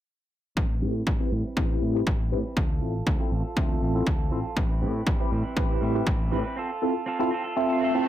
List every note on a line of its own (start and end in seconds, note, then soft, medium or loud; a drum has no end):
0.56 0.83 A1 medium
0.56 0.70 G3 medium
0.56 0.70 C4 medium
0.56 0.70 E4 medium
0.56 0.68 B4 medium
0.56 kick loud
0.69 1.06 C4 soft
0.69 1.06 E4 soft
0.69 1.06 B4 medium
0.82 1.01 A2 loud
0.82 0.92 C4 medium
0.82 0.92 E4 medium
0.82 0.92 G4 medium
0.82 0.92 B4 medium
1.06 1.16 A1 medium
1.06 1.19 G3 medium
1.06 1.17 B4 medium
1.06 kick loud
1.19 1.29 C4 medium
1.19 1.31 C4 soft
1.19 1.29 E4 medium
1.19 1.32 E4 medium
1.19 1.30 G4 medium
1.19 1.31 B4 medium
1.19 1.30 B4 loud
1.31 1.41 A2 medium
1.31 1.44 G3 medium
1.31 1.45 C4 medium
1.31 1.44 E4 medium
1.31 1.43 B4 medium
1.44 1.71 C4 soft
1.44 1.69 E4 soft
1.44 1.67 B4 medium
1.57 1.75 A1 medium
1.57 1.92 C4 medium
1.57 1.92 E4 medium
1.57 1.92 G4 medium
1.57 1.92 B4 loud
1.57 kick loud
1.69 1.81 C4 medium
1.69 1.82 E4 medium
1.69 1.81 B4 medium
1.81 2.01 A2 medium
1.81 2.05 G3 medium
1.81 2.06 C4 medium
1.81 2.07 E4 medium
1.81 2.07 B4 medium
1.95 2.04 C4 medium
1.95 2.04 E4 medium
1.95 2.04 G4 medium
1.95 2.05 B4 medium
2.06 2.33 A1 medium
2.06 2.30 G3 medium
2.06 2.31 C4 medium
2.06 2.33 B4 loud
2.06 kick loud
2.31 2.41 A2 medium
2.31 2.44 G3 medium
2.31 2.38 C4 medium
2.31 2.45 C4 medium
2.31 2.38 E4 medium
2.31 2.45 E4 medium
2.31 2.38 G4 medium
2.31 2.38 B4 loud
2.31 2.43 B4 medium
2.44 2.55 C4 medium
2.44 2.57 E4 medium
2.44 2.56 B4 medium
2.56 2.82 D2 medium
2.56 2.69 C4 medium
2.56 2.70 F4 medium
2.56 2.68 A4 medium
2.56 kick loud
2.69 3.06 F4 soft
2.69 3.06 A4 medium
2.81 3.00 A1 loud
2.81 2.92 C4 medium
2.81 2.92 E4 medium
2.81 2.92 F4 medium
2.81 2.92 A4 medium
3.06 3.16 D2 medium
3.06 3.19 C4 medium
3.06 3.18 A4 medium
3.06 kick loud
3.19 3.29 C4 loud
3.19 3.29 E4 medium
3.19 3.29 F4 medium
3.19 3.32 F4 medium
3.19 3.31 A4 medium
3.19 3.30 A4 loud
3.31 3.41 A1 medium
3.31 3.44 C4 medium
3.31 3.45 F4 medium
3.31 3.43 A4 medium
3.44 3.71 F4 soft
3.44 3.68 A4 medium
3.56 3.75 D2 medium
3.56 3.92 C4 medium
3.56 3.92 F4 medium
3.56 3.92 A4 loud
3.56 3.92 E5 medium
3.56 kick loud
3.69 3.81 F4 medium
3.69 3.81 A4 medium
3.81 4.01 A1 medium
3.81 4.05 C4 medium
3.81 4.06 F4 medium
3.81 4.07 A4 medium
3.95 4.04 C4 medium
3.95 4.04 E4 medium
3.95 4.05 F4 medium
3.95 4.05 A4 medium
4.07 4.32 D2 medium
4.07 4.33 A4 loud
4.07 kick loud
4.31 4.41 A1 medium
4.31 4.44 C4 medium
4.31 4.38 C4 medium
4.31 4.38 E4 medium
4.31 4.38 F4 medium
4.31 4.45 F4 medium
4.31 4.38 A4 loud
4.31 4.43 A4 medium
4.44 4.57 F4 soft
4.44 4.56 A4 medium
4.56 4.83 A1 medium
4.56 4.69 G3 medium
4.56 4.70 C4 medium
4.56 4.69 E4 medium
4.56 4.68 B4 medium
4.56 kick loud
4.69 5.06 C4 soft
4.69 5.07 E4 medium
4.69 5.06 B4 medium
4.82 5.01 A2 loud
4.82 4.92 C4 medium
4.82 4.92 E4 medium
4.82 4.92 G4 medium
4.82 4.92 B4 medium
5.06 5.16 A1 medium
5.06 5.20 G3 medium
5.06 5.20 C4 medium
5.06 5.20 E4 loud
5.06 5.18 B4 loud
5.06 kick loud
5.19 5.29 C4 medium
5.19 5.31 C4 soft
5.19 5.29 E4 medium
5.19 5.32 E4 medium
5.19 5.29 G4 medium
5.19 5.31 B4 medium
5.19 5.30 B4 loud
5.31 5.41 A2 medium
5.31 5.44 G3 medium
5.31 5.45 C4 medium
5.31 5.44 E4 medium
5.31 5.42 B4 medium
5.44 5.71 C4 soft
5.44 5.69 E4 medium
5.44 5.67 B4 medium
5.56 5.75 A1 medium
5.56 5.92 C4 medium
5.56 5.92 E4 medium
5.56 5.92 G4 medium
5.56 5.92 B4 loud
5.56 kick loud
5.69 5.81 C4 soft
5.69 5.82 E4 medium
5.69 5.81 B4 medium
5.81 6.00 A2 medium
5.81 6.05 G3 medium
5.81 6.06 C4 medium
5.81 6.06 E4 medium
5.81 6.07 B4 medium
5.95 6.04 C4 medium
5.95 6.04 E4 medium
5.95 6.04 G4 medium
5.95 6.05 B4 medium
6.06 6.33 A1 medium
6.06 6.30 G3 medium
6.06 6.31 C4 medium
6.06 6.32 E4 medium
6.06 6.33 B4 loud
6.06 kick loud
6.31 6.41 A2 medium
6.31 6.44 G3 medium
6.31 6.38 C4 medium
6.31 6.45 C4 medium
6.31 6.38 E4 medium
6.31 6.44 E4 medium
6.31 6.38 G4 medium
6.31 6.38 B4 loud
6.31 6.43 B4 medium
6.44 6.55 C4 medium
6.44 6.57 E4 medium
6.44 6.56 B4 medium
6.56 6.70 C4 medium
6.56 6.70 F4 medium
6.56 6.68 A4 medium
6.69 7.06 F4 soft
6.69 7.06 A4 medium
6.82 6.92 C4 medium
6.82 6.92 E4 medium
6.82 6.92 F4 medium
6.82 6.92 A4 medium
7.06 7.19 C4 medium
7.06 7.20 F4 loud
7.06 7.18 A4 loud
7.19 7.29 C4 loud
7.19 7.29 E4 medium
7.19 7.29 F4 medium
7.19 7.31 F4 medium
7.19 7.31 A4 medium
7.19 7.29 A4 loud
7.31 7.44 C4 medium
7.31 7.45 F4 medium
7.31 7.43 A4 medium
7.44 7.71 F4 soft
7.44 7.68 A4 medium
7.56 7.91 C4 medium
7.56 7.92 F4 medium
7.56 7.92 A4 loud
7.56 7.92 E5 medium
7.56 swell medium
7.69 7.81 F4 medium
7.69 7.81 A4 medium
7.81 8.05 C4 medium
7.81 8.06 F4 medium
7.81 8.07 A4 medium
7.94 8.04 C4 medium
7.94 8.04 E4 medium
7.94 8.04 F4 medium
7.94 8.05 A4 medium